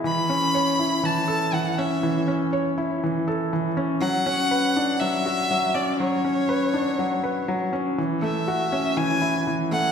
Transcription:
<<
  \new Staff \with { instrumentName = "Violin" } { \time 4/4 \key a \major \tempo 4 = 121 b''2 a''4 fis''8 e''8~ | e''8 r2. r8 | fis''2 e''4. d''8 | cis''2.~ cis''8 r8 |
r8 e''4. gis''4 r8 fis''8 | }
  \new Staff \with { instrumentName = "Felt piano" } { \time 4/4 \key a \major e8 cis'8 cis''8 e'8 e8 a'8 e8 cis'8 | e8 cis'8 cis''8 e'8 e8 a'8 e8 cis'8 | fis8 cis'8 b'8 d'8 fis8 fis'8 fis8 cis'8 | fis8 cis'8 b'8 d'8 fis8 b'8 fis8 cis'8 |
e8 a8 fis'8 cis'8 e8 e'8 e8 a8 | }
>>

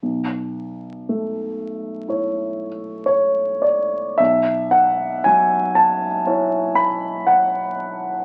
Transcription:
\new Staff \with { instrumentName = "Grand piano" } { \time 4/4 \key b \dorian \tempo 4 = 58 << { r2. cis''8 d''8 | e''8 fis''8 gis''8 a''4 b''8 fis''4 | } \\ { b,,4 a4 <e' cis''>2 | b,,4 fis4 <e' cis''>2 | } >> }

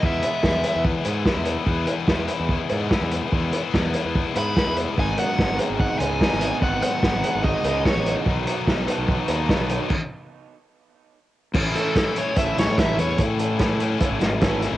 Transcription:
<<
  \new Staff \with { instrumentName = "Lead electric guitar" } { \time 4/4 \key e \major \tempo 4 = 146 e''2 r2 | r1 | r2 r8 b''4 r8 | gis''8 fis''4 r8 fis''8 gis''4. |
fis''8 fis''4. dis''4 cis''8. r16 | r1 | r1 | r8 a'4 cis''8 e''8 cis''8 e''8 cis''8 |
r1 | }
  \new Staff \with { instrumentName = "Overdriven electric guitar" } { \time 4/4 \key e \major r1 | r1 | r1 | gis,8 fis8 b8 gis'8 dis'8 gis'8 b8 dis'8 |
gis,8 fis8 b8 gis'8 dis'8 gis'8 b8 dis'8 | b,8 fis8 b8 a'8 dis'8 a'8 b8 dis'8 | r1 | r8 <e a cis' a'>8 r4 <e a cis' a'>8 r8 <e a cis' a'>8 r8 |
r8 <e a cis' a'>8 r4 <e a cis' a'>8 r8 <e a cis' a'>8 r8 | }
  \new Staff \with { instrumentName = "Distorted electric guitar" } { \time 4/4 \key e \major <e gis b e'>8 <gis b e'>8 <e gis b e'>8 <gis b e'>4 <gis b e'>8 <e gis b e'>4 | <e gis b e'>8 <gis b e'>8 <e gis b e'>8 <gis b e'>4 <gis b e'>8 <e gis b e'>4 | <e gis b e'>8 <gis b e'>8 <e gis b e'>8 <gis b e'>4 <gis b e'>8 <e gis b e'>4 | <gis, dis gis b dis'>8 <gis b dis'>8 <gis, dis gis b dis'>8 <gis b dis'>4 <gis b dis'>8 <dis gis b dis'>4 |
<gis, dis gis b dis'>8 <gis b dis'>8 <gis, dis gis b dis'>8 <gis b dis'>4 <gis b dis'>8 <dis gis b dis'>4 | <b, dis fis b dis'>8 <fis b dis'>8 <b, dis fis b dis'>8 <fis b dis'>4 <fis b dis'>8 <dis fis b dis'>4 | r1 | <a, e a cis' e'>4 <e a cis' e'>8 <a cis' e'>8 <a, e a cis' e'>8 <a cis' e'>8 <e a cis' e'>4 |
<a, e a cis' e'>4 <e a cis' e'>8 <a cis' e'>8 <a, e a cis' e'>8 <a cis' e'>8 <e a cis' e'>4 | }
  \new Staff \with { instrumentName = "Fingered electric bass" } { \clef bass \time 4/4 \key e \major e,8 r8 e,8 r16 e,8 r16 gis,8 r16 e,8 r16 | e,8 r8 e,8 r16 e,8 r16 gis,8 r16 e,8 r16 | e,8 r8 e,8 r16 e,8 r16 gis,8 r16 e,8 r16 | gis,,8 r8 gis,,8 r16 gis,,8 r16 cis,8 r16 gis,,8 r16 |
gis,,8 r8 gis,,8 r16 gis,,8 r16 cis,8 r16 a,,8 r16 | b,,8 r8 b,,8 r16 b,,8 r16 dis,8 r16 b,,8 r16 | r1 | a,,8 r4. r16 a,,16 a,,16 a,16 a,,8 e,8 |
a,2 r16 a,,16 gis,,4~ gis,,16 gis,,16 | }
  \new DrumStaff \with { instrumentName = "Drums" } \drummode { \time 4/4 bd8 hh8 <bd sn>8 hh8 bd8 hh8 <bd sn>8 hh8 | bd8 hh8 <bd sn>8 hh8 bd8 hh8 <bd sn>8 hh8 | bd8 hh8 <bd sn>8 hh8 bd8 hh8 <bd sn>8 hh8 | bd8 hh8 <bd sn>8 hh8 bd8 hh8 <bd sn>16 sn16 hh8 |
bd8 hh8 <bd sn>8 hh8 bd8 hh8 <bd sn>8 hh8 | bd8 hh8 <bd sn>8 hh8 bd8 hh8 <bd sn>8 hh8 | <cymc bd>4 r4 r4 r4 | <cymc bd>8 hh8 <hh bd sn>8 hh8 <hh bd>8 <hh sn>8 <hh bd sn>8 hh8 |
<hh bd>8 hh8 <hh bd sn>8 hh8 <hh bd>8 <hh sn>8 <hh bd sn>8 <hh sn>8 | }
>>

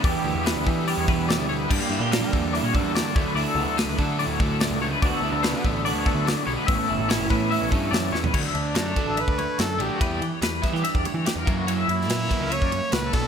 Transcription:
<<
  \new Staff \with { instrumentName = "Clean electric guitar" } { \time 4/4 \key d \major \tempo 4 = 144 d''16 g'8 g'16 b'8 a'8 d''16 cis''16 b'8 d''8 cis''16 b'16 | d''16 g'8 g'16 bes'8 a'8 d''16 cis''16 a'8 d''8 cis''16 b'16 | d''16 a'8 a'16 b'8 a'8 d''16 cis''16 a'8 d''8 cis''16 b'16 | d''16 a'8 a'16 b'8 a'8 d''16 cis''16 a'8 d''8 cis''16 b'16 |
e''16 a'8 a'16 cis''8 b'8 e''16 cis''16 a'8 d''8 cis''16 b'16 | cis''16 e''8 d''16 cis''8 r16 a'16 e''16 d''16 cis''8 fis'16 a'8 fis'16 | b'16 d''8 cis''16 b'8 r16 g'16 e''16 d''16 cis''8 g'16 bes'8 fis'16 | cis''16 e''8 d''16 cis''8 r16 ais'16 e''16 d''16 cis''8 fis'16 a'8 fis'16 | }
  \new Staff \with { instrumentName = "Trumpet" } { \time 4/4 \key d \major r1 | r1 | r1 | r1 |
r1 | r8 d'4. b'4 a'8 g'8~ | g'8 r2. r8 | r8 e'4. cis''4 b'8 a'8 | }
  \new Staff \with { instrumentName = "Clean electric guitar" } { \time 4/4 \key d \major << { <e g d' g'>8 g'8 d'8 g8 g'8 d'4 g8 | g16 bes16 e'16 g'16 d'8 bes8 e'16 fis'16 d'4 a8 | e'8 b16 r16 a8 a'4. a8 a8 | <d a b fis'>8 e'16 r16 b8 a8 fis'8 b4 g16 a16 |
b8 e'8 cis'8 b8 e'8 cis'4 b8 | r4 g16 a16 a'8 d'8 a4. | r4 g8 e'16 g'16 d'4. r8 | r8 ais8 b16 cis'16 b16 cis'16 ais4. r8 | } \\ { e,4 e4. b,4. | g,4 d4. d4 d,8~ | d,2 a,4. d,8 | d,4 d4. d,4. |
a,4 e4. e,4. | d,8 d2. d,8 | e,8 e2 d,8 e,8 fis,8 | fis2~ fis8 g,8 ais,8 b,8 | } >> }
  \new Staff \with { instrumentName = "Overdriven electric guitar" } { \time 4/4 \key d \major <e g b e'>8 <g b e'>8 <e g b e'>8 <e g b e'>8 <e g b e'>8 <g b e'>8 <e g b e'>8 <g b e'>8 | <g, d g bes d'>8 <g bes d'>8 <d g bes d'>8 <g, d g bes d'>8 <d g bes d'>8 <g bes d'>8 <g, d g bes d'>8 <d fis a d'>8 | <d fis a d'>8 <fis a d'>8 <d fis a d'>8 <d fis a d'>8 <d fis a d'>8 <fis a d'>8 <d fis a d'>8 <fis a d'>8 | <d fis b d'>8 <fis b d'>8 <d fis b d'>8 <d fis b d'>8 <d fis b d'>8 <fis b d'>8 <d fis b d'>8 <fis b d'>8 |
<a, e a cis' e'>8 <a cis' e'>8 <e a cis' e'>8 <a, e a cis' e'>8 <e a cis' e'>8 <a cis' e'>8 <a, e a cis' e'>8 <a cis' e'>8 | <d fis a d'>8 r4 <d fis a d'>8 r4. <d fis a d'>8 | <e g b e'>8 r4 <e g b e'>8 r4. <cis e ais e'>8 | <cis e ais e'>8 r4 <cis e ais e'>8 r4. <b, fis b d'>8 | }
  \new Staff \with { instrumentName = "Picked electric bass" } { \clef bass \time 4/4 \key d \major e,16 r16 d,16 e,8 d,16 e8. e,16 e,8. d,8. | g,16 r16 g,16 bes,8 g16 e,8. bes,8 e,8 r16 d,16 r16 | d,16 r16 cis,16 d,8 cis,16 d8. d,16 d,8. cis,8. | d,16 r16 d,16 d,8 d16 a,,8. d,8 d,8 r16 b,,16 r16 |
a,,16 r16 fis,,16 a,,8 fis,,16 a,8. a,,16 g,8 fis,8 e,8 | d,16 r16 d,8 fis,8 r16 a,,8 d,8 r16 fis,8 a,,16 r16 | e,8 e16 r16 e,8 r16 e16 r16 e,16 r16 e16 r16 e,16 fis,8~ | fis,8 fis,8 ais,8 r16 cis,8 fis,8 r16 cis,8 b,,16 r16 | }
  \new DrumStaff \with { instrumentName = "Drums" } \drummode { \time 4/4 <hho bd>4 <hho sn>8 bd8 hho8 bd8 <hho sn>4 | <cymc bd>4 <hho sn>8 bd8 hho8 bd8 <hho sn>8 bd8 | hho4 <hho sn>8 bd8 hho8 bd8 <hho sn>4 | <hho bd>4 <hho sn>8 bd8 hho8 bd8 <hho sn>4 |
<hho bd>4 <hho sn>8 bd8 hho8 bd8 <hho sn>8 sn16 tomfh16 | <cymc bd>8 cymr8 <cymr sn>8 <bd cymr>8 cymr16 bd16 cymr8 <cymr sn>8 cymr8 | <bd cymr>8 cymr8 <cymr sn>8 <bd cymr sn>16 sn16 cymr16 bd16 cymr8 <cymr sn>8 <bd cymr>8 | cymr8 cymr16 sn16 <cymr sn>8 <bd cymr>8 cymr16 bd16 cymr8 <cymr sn>8 <bd cymr>8 | }
>>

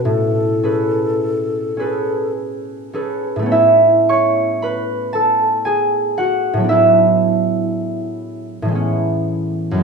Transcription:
<<
  \new Staff \with { instrumentName = "Flute" } { \time 3/4 \key a \major \tempo 4 = 56 a'2 r4 | r2. | r2. | }
  \new Staff \with { instrumentName = "Harp" } { \time 3/4 \key a \major << { r2. | <e' e''>8 <cis'' cis'''>8 <b' b''>8 <a' a''>8 <gis' gis''>8 <fis' fis''>8 | <e' e''>2. | } \\ { <a, a cis' a' b'>8 <cis' gis' a' b'>4 <cis' gis' a' b'>4 <cis' gis' a' b'>8~ | <cis' gis' a' b'>2.~ | <cis' gis' a' b'>2. | } >> }
  \new Staff \with { instrumentName = "Harp" } { \time 3/4 \key a \major r2. | <a, a b cis'>2. | <a, fis b d'>2 <a, e gis b cis'>4 | }
>>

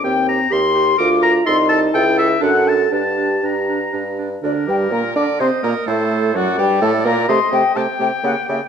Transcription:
<<
  \new Staff \with { instrumentName = "Flute" } { \time 3/4 \key g \minor \tempo 4 = 125 g''8 bes''8 c'''4 d'''8 bes''8 | c'''8 a''8 g''8 e''8 fis''8 a''8 | a''4 bes''4. r8 | d''8 g''8 bes''8 d'''8 c'''8 bes''8 |
a''4 fis''8 g''8 a''8 bes''8 | c'''8 g''8 a''8 g''8 fis''8 e''8 | }
  \new Staff \with { instrumentName = "Oboe" } { \time 3/4 \key g \minor g''8 bes''8 c'''4 d'''8 bes''8 | c'''8 a''8 g''8 e''8 fis''8 a''8 | a''4 bes''4. r8 | bes'2 ees''4 |
c''4 d''4 d''4 | ees''4 g''2 | }
  \new Staff \with { instrumentName = "Clarinet" } { \time 3/4 \key g \minor g'8 g'8 g'8 g'8 bes'8 bes'8 | a'8 a'8 a'8 a'8 d'8 d'8 | d'8 d'8 d'8 d'8 d'8 d'8 | d'8 g'8 bes'8 d''8 c''8 bes'8 |
a'4 fis'8 g'8 a'8 bes'8 | g'8 g'8 g'8 g'8 g'8 g'8 | }
  \new Staff \with { instrumentName = "French horn" } { \time 3/4 \key g \minor c'4 g'4 f'4 | ees'4 e'4 a'4 | g'2~ g'8 r8 | d8 g8 bes8 d'8 c'8 bes8 |
a4 fis8 g8 a8 bes8 | a8 a8 a8 a8 ais8 ais8 | }
  \new Staff \with { instrumentName = "Bassoon" } { \clef bass \time 3/4 \key g \minor ees,4 ees,4 d,4 | c,4 cis,4 fis,4 | g,4 g,4 g,4 | d,8 g,8 bes,8 d8 c8 bes,8 |
a,4 fis,8 g,8 a,8 bes,8 | c8 c8 c8 c8 cis8 cis8 | }
>>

